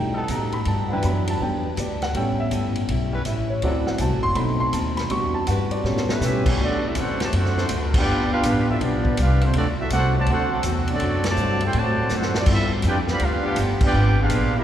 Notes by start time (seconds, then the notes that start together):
Already playing: B2 G3 A3 D#4 G4 G5
0.13 G3 B3 D#4 A4
0.18 A5
0.28 A2 B2 A3 D#4 G4 A#5, kick, hi-hat pedal, ride
0.52 B5, ride
0.65 G2 E3 B3 D4 G4 A5, kick, ride
0.88 F#3 D4 E4 B4 F#5
0.92 E3 D4 G5
1.02 F#2 E3 B3 D4 G4 B5, kick, hi-hat pedal, ride
1.27 A5, ride
1.40 E2 E3 F#3 G3 B3 D4 G4 G5, kick
1.66 B4
1.76 D2 E3 B3 D4 G4 D5, kick, hi-hat pedal, ride
2.02 F#5, snare, ride
2.13 A1 A2 G3 B3 C#4 E4 A4 G5, kick, ride
2.18 E4
2.40 E5
2.51 G1 A2 G3 C#4 E4, kick, hi-hat pedal, ride
2.75 ride
2.89 B1 A2 G3 C#4 E4, kick, ride
3.13 G3 C#4 E4 B4
3.25 A1 A2 G3 C#4 E4 E5, kick, hi-hat pedal, ride
3.50 C#5
3.62 D2 D3 F#3 A3 C4 D4 E4 F#4 A4 D5, kick, ride
3.86 F#5, snare
3.96 C2 D3 G#5, kick, hi-hat pedal, ride
4.00 A3 C4 F#4 A5
4.12 A1
4.23 F#1 C6
4.34 B1 B2 A3 C4 D#4 B5, kick, ride
4.38 D#4
4.60 C6
4.73 D#2 B2 A3 C4 D#4 A5, kick, hi-hat pedal, ride
4.97 B5, snare, ride
5.10 E2 E3 G3 D4 F#4 G4 B4 C#6, kick, ride
5.34 A5
5.47 G2 E3 D4 G4 B4 F#5, kick, hi-hat pedal, ride
5.71 D5, ride
5.84 A2 G3 A3 B3 C#4 G4 C#5, snare
5.88 B4
5.97 snare
6.09 A3 C#4 G4 B4, snare
6.21 B2 G3 A3 C#4 E4 G4 B4, snare, hi-hat pedal
6.25 C#4 E5
6.46 E3 G3 B3 C#4 E4 G4 C#5, kick, crash
6.58 D2 D3 F#3 A3 C4 D4 F#4, kick
6.63 C4 F#4 A4 D5
6.86 C4 E4 F#4 A4 E5
6.95 E2 D3 A3 C4 D4 F#4 A4 C5 F#5, kick, hi-hat pedal, ride
7.19 C3 A3 F#4 C5, muted upright bass stroke, snare, ride
7.23 F#3 D5 A5
7.33 F#2 D3 A3 C4 F#4, kick, ride
7.37 D4 A4 C5 F#5
7.45 snare
7.57 A3 D4 F#4 C5, snare
7.69 D2 D3 A3 C4 F#4, kick, hi-hat pedal, ride
7.94 B3 D4 G4, kick, crash
7.99 F4 B4 D5 G5
8.06 G1 G2 F3 G3 B3 D4 F4 B4
8.10 D4
8.32 B3 D4 F4 G4 B4 F5
8.43 A1 G2 F3 G3 B3 D4 F4 B4, kick, hi-hat pedal, ride
8.69 C4 E4 F4 A4 E5
8.80 B1 G2 F3 B3 D4 F4 G4 D5, kick, ride
9.05 kick
9.17 C2 G2 F3 B3 D4 F4, kick, hi-hat pedal, ride
9.22 D4 G4 B4 F5
9.41 A3 C4 D4 F4 C5, ride
9.53 D2 D3 F#3 A3 C4 D4 F#4 A4, kick, ride
9.58 D5
9.79 C4 E4 F#4 A4 E5
9.90 C2 D3 A3 C4 D4 F#4 A4 C5 F#5, kick, hi-hat pedal, ride
10.16 C3 F#3 A3 F#4 C5 D5 A5
10.26 D2 D3 A3 C4 F#4, kick, ride
10.30 D4 F#4 A4 C5 F#5
10.51 F#3 C4 D4 A4
10.63 E2 D3 A3 C4 F#4, kick, hi-hat pedal, ride
10.88 F#3 A3 D4, ride
10.94 C4 F#4 A4 D5
11.00 F#2 D3 A3 C4 F#4, kick, ride
11.24 F#3 A3, snare, ride
11.28 C3 F#4 C5 D5 A5
11.36 G2 D3 A3 C4 F#4, hi-hat pedal
11.60 G4, ride
11.65 E4 A4 C5 G5
11.73 A2 C3 D3 F#3 A3 C4 F#4, kick, ride
11.77 F#4 C5 D5 A5
12.09 F#2 D3 A3 C4 F#4, snare, hi-hat pedal
12.15 D4 A4 C5 F#5
12.22 snare
12.34 F#3 A3 D4, snare
12.40 C4 F#4 A4 D5
12.46 G2 F3 B3 D4 E4, kick, crash
12.52 C4 F4 A4 E5
12.82 F2 G2 F3 B3 D4 G4, kick, hi-hat pedal, ride
12.88 F4 B4 D5 G5
13.07 D3 F3 B3, snare
13.12 G4 D5 F5 B5
13.19 D2 G2 F3 B3 D4 F4, kick, ride
13.25 D4 G4 B4 F5
13.43 F3 B3 D4 G4
13.56 G1 G2 F3 B3 D4, kick, hi-hat pedal, ride
13.81 B3 D4 G4, kick, crash
13.86 F4 B4 D5 G5
13.94 G#1 G#2 F3 B3 D4
14.19 B3 D4 F4 G#4 B4 F5
14.30 A#1 G#2 F3 B3 D4, kick, hi-hat pedal, ride
14.56 C#4 E4 G4 A#4 E5